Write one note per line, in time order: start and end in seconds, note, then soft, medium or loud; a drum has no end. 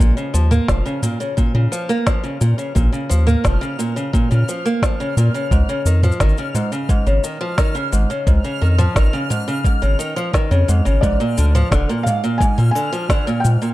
0.00 0.12 A#1 medium
0.00 0.15 A#2 medium
0.00 13.74 F6 medium
0.00 kick medium
0.00 cabasa soft
0.17 0.32 C#3 medium
0.17 cabasa soft
0.34 0.60 D#2 medium
0.34 0.49 F3 medium
0.34 cabasa medium
0.51 0.67 A#3 medium
0.51 mid tom medium
0.51 cabasa soft
0.68 0.81 F1 medium
0.68 0.84 F3 medium
0.68 kick medium
0.68 snare medium
0.68 cabasa soft
0.86 1.01 C#3 medium
0.86 cabasa soft
1.03 1.18 A#2 medium
1.03 mid tom medium
1.03 cabasa medium
1.20 1.36 C#3 medium
1.20 cabasa soft
1.37 1.53 A#2 medium
1.37 kick medium
1.37 cabasa soft
1.54 1.67 A#2 medium
1.54 1.70 C#3 medium
1.72 1.87 F3 medium
1.72 cabasa medium
1.89 2.05 A#3 medium
1.89 cabasa soft
2.06 2.22 F3 medium
2.06 kick medium
2.06 snare medium
2.06 cabasa soft
2.24 2.39 C#3 medium
2.24 cabasa soft
2.41 2.56 A#2 medium
2.41 2.54 A#2 medium
2.41 cabasa medium
2.58 2.74 C#3 medium
2.58 cabasa soft
2.75 2.88 A#1 medium
2.75 2.91 A#2 medium
2.75 kick medium
2.75 cabasa soft
2.92 3.08 C#3 medium
2.92 cabasa soft
3.09 3.36 D#2 medium
3.09 3.25 F3 medium
3.09 cabasa medium
3.27 3.42 A#3 medium
3.27 mid tom medium
3.27 cabasa soft
3.44 3.57 F1 medium
3.44 3.60 F3 medium
3.44 kick loud
3.44 snare medium
3.44 cabasa soft
3.61 3.77 C#3 medium
3.61 cabasa soft
3.79 3.94 A#2 medium
3.79 cabasa medium
3.96 4.13 C#3 medium
3.96 cabasa soft
4.13 4.29 A#2 medium
4.13 kick medium
4.13 cabasa soft
4.31 4.44 A#2 medium
4.31 4.46 C#3 medium
4.31 cabasa soft
4.49 4.64 F3 medium
4.49 cabasa medium
4.65 4.81 A#3 medium
4.65 cabasa soft
4.82 4.98 F3 medium
4.82 kick loud
4.82 snare loud
4.82 cabasa soft
5.00 5.15 C#3 medium
5.00 cabasa soft
5.17 5.30 A#2 medium
5.17 5.33 A#2 medium
5.17 cabasa medium
5.34 5.51 C#3 medium
5.34 cabasa soft
5.51 5.64 C#2 medium
5.51 5.67 G#2 medium
5.51 kick medium
5.51 cabasa soft
5.69 5.84 C#3 medium
5.69 cabasa soft
5.85 6.11 F2 medium
5.85 6.02 D#3 medium
5.85 cabasa medium
6.03 6.19 F3 medium
6.03 mid tom medium
6.03 cabasa soft
6.12 cabasa soft
6.20 6.33 G#1 medium
6.20 6.36 D#3 medium
6.20 kick loud
6.20 snare medium
6.20 cabasa soft
6.29 cabasa soft
6.38 6.53 C#3 medium
6.38 cabasa soft
6.55 6.70 G#2 medium
6.55 mid tom medium
6.55 cabasa medium
6.72 6.88 C#3 medium
6.72 cabasa soft
6.89 7.05 G#2 medium
6.89 kick loud
6.89 cabasa soft
7.07 7.19 G#1 medium
7.07 7.22 C#3 medium
7.07 cabasa soft
7.24 7.39 D#3 medium
7.24 cabasa medium
7.41 7.56 F3 medium
7.58 7.74 D#3 medium
7.58 kick loud
7.58 snare medium
7.58 cabasa soft
7.75 7.91 C#3 medium
7.75 cabasa soft
7.92 8.06 G#1 medium
7.92 8.08 G#2 medium
7.92 cabasa medium
8.10 8.26 C#3 medium
8.10 cabasa soft
8.27 8.40 C#2 medium
8.27 8.43 G#2 medium
8.27 kick medium
8.27 cabasa soft
8.44 8.60 C#3 medium
8.44 cabasa soft
8.61 8.87 F2 medium
8.61 8.77 D#3 medium
8.78 8.94 F3 medium
8.78 mid tom medium
8.78 cabasa soft
8.96 9.09 G#1 medium
8.96 9.12 D#3 medium
8.96 kick loud
8.96 snare medium
8.96 cabasa soft
9.13 9.29 C#3 medium
9.13 cabasa soft
9.30 9.46 G#2 medium
9.30 mid tom soft
9.30 cabasa medium
9.48 9.64 C#3 medium
9.48 cabasa soft
9.65 9.81 G#2 medium
9.65 kick loud
9.65 cabasa soft
9.82 9.95 G#1 medium
9.82 9.98 C#3 medium
9.82 cabasa soft
9.99 10.15 D#3 medium
9.99 cabasa medium
10.16 10.32 F3 medium
10.16 cabasa soft
10.33 10.49 D#3 medium
10.33 kick loud
10.33 snare medium
10.33 cabasa soft
10.51 10.64 F2 loud
10.51 10.67 C#3 medium
10.51 cabasa soft
10.68 10.81 F2 medium
10.68 10.84 G#2 medium
10.68 cabasa medium
10.85 10.99 G#1 medium
10.85 11.02 C#3 medium
10.85 cabasa soft
11.01 11.16 A#1 medium
11.01 11.19 G#2 medium
11.01 12.09 D5 medium
11.01 kick medium
11.01 cabasa soft
11.20 11.36 A#2 medium
11.20 cabasa soft
11.37 11.63 D2 medium
11.37 11.53 D3 medium
11.37 cabasa medium
11.55 11.70 F3 medium
11.55 mid tom medium
11.55 cabasa soft
11.71 11.84 F1 medium
11.71 11.87 D3 medium
11.71 kick loud
11.71 snare medium
11.71 cabasa soft
11.89 12.05 A#2 medium
11.89 cabasa soft
12.03 12.22 G#2 medium
12.03 12.37 F5 medium
12.03 mid tom medium
12.03 cabasa medium
12.24 12.40 A#2 medium
12.24 cabasa soft
12.38 12.56 G#2 medium
12.38 12.70 G#5 loud
12.38 kick medium
12.38 cabasa soft
12.58 12.74 A#2 medium
12.58 12.71 A#2 medium
12.58 cabasa soft
12.71 13.44 G#5 loud
12.75 12.91 D3 medium
12.75 cabasa medium
12.92 13.08 F3 medium
12.92 cabasa soft
13.09 13.25 D3 medium
13.09 kick medium
13.09 snare medium
13.09 cabasa soft
13.27 13.43 A#2 medium
13.27 cabasa soft
13.40 13.48 G5 medium
13.44 13.60 G#2 medium
13.44 13.57 A#2 medium
13.44 cabasa medium
13.62 13.74 A#2 medium
13.62 cabasa soft